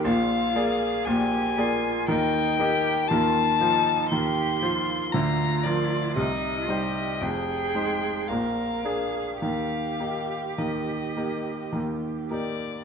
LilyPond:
<<
  \new Staff \with { instrumentName = "Violin" } { \time 3/4 \key ees \major \tempo 4 = 58 f''4 aes''4 g''4 | a''4 c'''4 bes''8 d''8 | ees''4 g''4 f''4 | f''4 ees''4 r8 d''8 | }
  \new Staff \with { instrumentName = "Cello" } { \time 3/4 \key ees \major f'8 aes'8 g'8 f'8 ees'8 g'8 | f'8 ees'8 g'8 f'8 f'4 | ees'8 g'8 aes'4 bes'8 aes'8 | g'2~ g'8 r8 | }
  \new Staff \with { instrumentName = "Grand piano" } { \time 3/4 \key ees \major <bes,, bes,>8 <bes aes' d''>8 <bes,, bes,>8 <bes aes' d''>8 <ees, ees>8 <bes g' ees''>8 | <ees, ees>8 <f f' c''>8 <ees, ees>8 <f f' c''>8 <d, d>8 <f f' bes'>8 | <c, c>8 <g ees' c''>8 <f,, f,>8 <aes ees' c''>8 <bes,, bes,>8 <bes d' aes'>8 | <ees, ees>8 <bes ees' g'>8 <ees, ees>8 <bes ees' g'>8 <ees, ees>8 <bes ees' g'>8 | }
>>